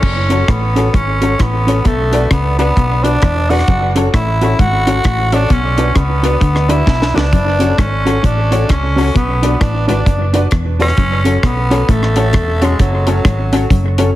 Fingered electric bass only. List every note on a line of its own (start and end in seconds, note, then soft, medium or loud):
0.03 0.42 F#1 loud
0.49 0.87 A1 medium
0.94 1.33 G#1 medium
1.40 1.79 A1 medium
1.86 2.25 B1 loud
2.31 2.70 C#2 loud
2.77 3.16 B1 medium
3.23 3.61 E1 medium
3.68 4.07 F#1 loud
4.14 4.53 A1 medium
4.59 4.98 G#1 medium
5.05 5.44 A1 medium
5.51 5.89 B1 loud
5.96 6.35 C#2 medium
6.42 6.80 D2 medium
6.87 7.11 B1 medium
7.16 7.30 C#2 medium
7.33 7.72 F#1 loud
7.79 8.17 G#1 medium
8.24 8.63 A1 medium
8.70 9.09 C#2 medium
9.16 9.54 B1 loud
9.61 9.85 A1 medium
9.89 10.04 G#1 medium
10.06 10.45 F#1 medium
10.53 10.91 E1 medium
10.98 11.36 F#1 loud
11.43 11.82 B1 medium
11.89 12.36 A1 medium
12.34 12.73 E1 medium
12.80 13.18 F#1 medium
13.25 13.64 G#1 medium
13.71 14.10 F#1 loud